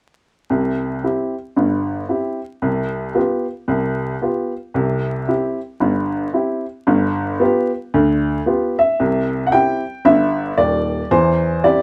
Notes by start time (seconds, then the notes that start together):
0.50 C2 C3
1.04 C4 E4 G4
1.56 G1 G2
2.09 C4 E4 G4
2.62 C2 C3
3.15 B3 F4 G4
3.68 C2 C3
4.22 B3 F4 G4
4.74 C2 C3
5.28 C4 E4 G4
5.80 G1 G2
6.33 C4 E4 G4
6.87 G1 G2
7.40 B3 F4 G4
7.94 D2 D3
8.46 B3 F4 G4
8.79 E5
9.00 C2 C3
9.46 F#5
9.52 C4 E4 G4 G5
10.05 G1 G2 E5
10.57 D#1 D#2 D5
11.11 E2 E3 C5
11.64 C4 E4 G4 D5